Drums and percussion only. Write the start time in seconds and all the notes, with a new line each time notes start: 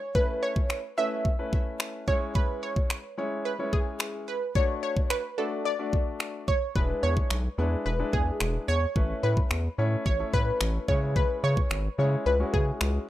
0.15 kick
0.56 kick
0.70 finger snap
1.25 kick
1.53 kick
1.80 finger snap
2.08 kick
2.35 kick
2.76 kick
2.90 finger snap
3.73 kick
4.00 finger snap
4.55 kick
4.97 kick
5.10 finger snap
5.93 kick
6.20 finger snap
6.48 kick
6.76 kick
7.17 kick
7.30 finger snap
8.13 kick
8.40 finger snap
8.96 kick
9.37 kick
9.51 finger snap
10.06 kick
10.34 kick
10.61 finger snap
10.88 kick
11.16 kick
11.57 kick
11.71 finger snap
12.54 kick
12.81 finger snap